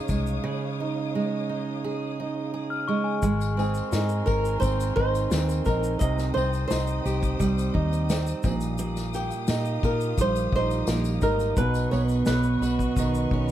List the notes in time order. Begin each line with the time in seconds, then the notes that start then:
Already playing: C#3 D#4 G#4 C#5 F5 D#6
0.08 C2 G#3, kick, tambourine, shaker
0.27 shaker
0.44 C#3
0.80 D#4
1.15 G#3
1.49 D#4
1.84 G#4
2.20 D#4
2.54 G#4
2.70 F6
2.88 G#3 C#6
3.04 G#5
3.22 G#1 G#3 A#4 G#5 C6, kick, shaker
3.41 tambourine, shaker
3.57 C4 G#4, tambourine
3.74 tambourine, shaker
3.92 G#2 D#4, snare, tambourine, shaker
4.09 shaker
4.26 G#1 A#4, kick, tambourine
4.45 shaker
4.60 G#1 C4 C5, kick, tambourine, shaker
4.80 tambourine, shaker
4.96 G#1 D#4 C5, kick
5.15 tambourine, shaker
5.31 D#2 C4, snare, tambourine, shaker
5.49 A#4, tambourine, shaker
5.65 A#1 D#4 A#4, kick, tambourine, shaker
5.83 shaker
5.99 C2 C3 C5 D#5 G5 D#6, kick, shaker
6.18 snare, tambourine, shaker
6.34 C2 C4 C5, tambourine
6.53 tambourine, shaker
6.68 C2 D#4 C5, snare, tambourine, shaker
6.87 shaker
7.05 C2 G4, tambourine, shaker
7.23 kick, shaker
7.39 C2 G3, kick, tambourine, shaker
7.58 tambourine, shaker
7.74 D#2 D#4, kick
7.93 tambourine, shaker
8.09 C4, snare, tambourine, shaker
8.27 tambourine, shaker
8.43 A#1 A#2 G4 F5 D#6, kick, tambourine, shaker
8.61 tambourine, shaker
8.78 A#2, shaker
8.96 snare, tambourine, shaker
9.14 A#3 G4, tambourine, shaker
9.30 tambourine, shaker
9.47 A#2 D#4, snare, tambourine, shaker
9.65 shaker
9.83 A#2 F4 A#4, kick, tambourine
10.01 shaker
10.18 A#1 G3 C5, kick, tambourine, shaker
10.36 tambourine, shaker
10.52 A#1 D#4 C5, kick
10.71 tambourine, shaker
10.87 A#1 A#3, snare, tambourine, shaker
11.04 tambourine, shaker
11.21 G#1 D#4 A#4, kick, tambourine, shaker
11.40 tambourine, shaker
11.57 B1 B2 B4 D#5 C#6, kick, shaker
11.74 tambourine, shaker
11.91 B1 B3 C#5, tambourine
12.09 tambourine, shaker
12.26 B1 C#4 B4, snare, tambourine, shaker
12.43 shaker
12.61 B1 F#4, tambourine, shaker
12.79 kick, shaker
12.96 B1 D#3, kick, tambourine, shaker
13.15 shaker
13.31 B1 C#4, kick